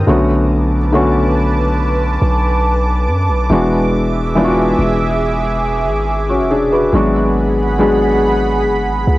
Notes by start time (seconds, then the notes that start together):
0.07 B1 D3 A3 B3 C#4 F#4 B4 A5 D6
0.92 D3 A3 B3 C#4 F#4
2.22 B1
3.07 F#2
3.29 B1
3.49 E1 E3 G#3 B3 D4 F#4 G#4 E5
4.35 E3 G#3 B3 D4 F4
4.44 F#4
4.79 E1
5.86 G#1
6.29 C#4 F#4
6.39 E1
6.51 D4 G#4
6.72 F#4 B4
6.92 G#1 F#3 G#3 B3 D4 F#4 G#4 F#5 B5
7.78 F#3 G#3 B3 D4 G#4
8.65 F#1
8.86 G#1
9.07 C#2